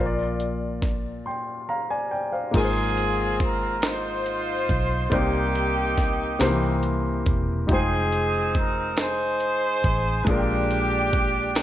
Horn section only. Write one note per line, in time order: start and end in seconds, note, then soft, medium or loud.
2.54 3.79 C4 medium
2.54 3.79 F4 medium
2.54 3.37 G#4 medium
3.43 3.84 A#4 medium
3.84 5.08 D#4 medium
3.84 5.08 F4 medium
3.84 5.13 C5 medium
5.11 6.80 A#3 medium
5.11 6.80 D#4 medium
5.11 6.83 G4 medium
7.69 8.94 C4 medium
7.69 8.95 D#4 medium
7.69 8.53 G#4 loud
8.57 8.96 A#4 medium
8.99 10.24 D#4 medium
8.99 10.24 G#4 medium
8.99 10.28 C5 loud
10.28 11.63 D4 medium
10.28 11.63 G4 medium